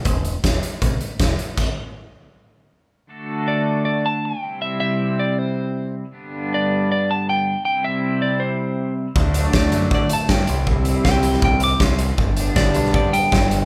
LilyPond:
<<
  \new Staff \with { instrumentName = "Clean electric guitar" } { \time 4/4 \key c \lydian \tempo 4 = 158 r1 | r1 | r4 d''4 d''8 a''8 g''4 | e''8 e''4 d''8 c''4. r8 |
r4 d''4 d''8 a''8 g''4 | g''8 e''4 d''8 c''4. r8 | r4 d''4 d''8 a''8 g''4 | r4 g''4 g''8 d'''8 c'''4 |
r4 d''4 d''8 g''4. | }
  \new Staff \with { instrumentName = "Clean electric guitar" } { \time 4/4 \key c \lydian <g c' e' b'>8 r4 <g c' e' b'>8 r8 <g c' e' b'>8 r4 | r1 | <d a d' fis' a'>2.~ <d a d' fis' a'>8 <c g c' e'>8~ | <c g c' e'>1 |
<g, d g b d'>1 | <c g c' e'>1 | <fis a d'>2.~ <fis a d'>8 <c' e'>8~ | <c' e'>1 |
<g b d'>1 | }
  \new Staff \with { instrumentName = "Clean electric guitar" } { \clef bass \time 4/4 \key c \lydian r4. <e g c'>8 r4 <g c'>8 <e g>8 | r1 | <d a d' fis' a'>2.~ <d a d' fis' a'>8 <c g c' e'>8~ | <c g c' e'>1 |
<g, d g b d'>1 | <c g c' e'>1 | <d fis a d'>2.~ <d fis a d'>8 <c g c' e'>8~ | <c g c' e'>1 |
<g, d g b d'>1 | }
  \new Staff \with { instrumentName = "Picked electric bass" } { \clef bass \time 4/4 \key c \lydian e,,4 e,,8 r8 b,,8 r8 e,,8 r8 | r1 | r1 | r1 |
r1 | r1 | d,4 d,8 fis,8 d8 r8 g,8 c,8~ | c,4 c,4 c,4 c,4 |
g,,4 g,,8 b,,8 g,8 r8 g,,4 | }
  \new DrumStaff \with { instrumentName = "Drums" } \drummode { \time 4/4 <hh bd>8 hh8 <hh bd sn>8 hh8 <hh bd>8 hh8 <hh bd sn>8 hh8 | <cymc bd>4 r4 r4 r4 | r4 r4 r4 r4 | r4 r4 r4 r4 |
r4 r4 r4 r4 | r4 r4 r4 r4 | bd8 hh8 <bd sn>8 hh8 bd8 hh8 <bd sn>8 hh8 | bd8 hh8 <bd sn>8 hh16 sn16 bd8 hh8 <bd sn>8 hh8 |
bd8 hh8 <bd sn>8 hh16 sn16 bd8 hh8 <bd sn>8 hh8 | }
>>